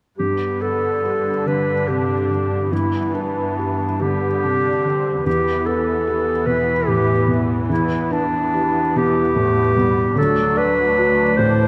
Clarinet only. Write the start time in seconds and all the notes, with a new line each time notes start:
0.18 G4
0.62 A4
1.48 B4
1.88 G4
2.72 E4
3.15 D4
4.01 G4
5.26 G4
5.66 A4
6.47 B4
6.88 G4
7.69 E4
8.12 D4
8.97 G4
10.18 A4
10.58 B4
11.37 C5